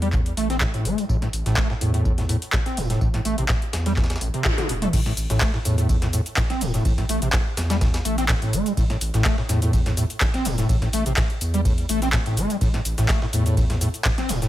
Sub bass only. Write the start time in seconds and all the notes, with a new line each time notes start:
Already playing: E2
0.37 A1
0.85 G1
1.09 A1
1.33 A1
1.46 A1
1.81 E2
2.77 E1
3.01 A1
3.25 A1
3.38 A1
3.73 E2
4.21 A1
4.69 E1
4.93 A1
5.17 A1
5.30 A1
5.65 E2
6.61 E1
6.85 A1
7.09 A1
7.22 A1
7.57 E2
8.05 A1
8.53 G1
8.77 A1
9.01 A1
9.14 A1
9.49 E2
10.45 E1
10.69 A1
10.93 A1
11.06 A1
11.41 E2
11.89 A1
12.37 G1
12.61 A1
12.85 A1
12.98 A1
13.33 E2
14.29 E1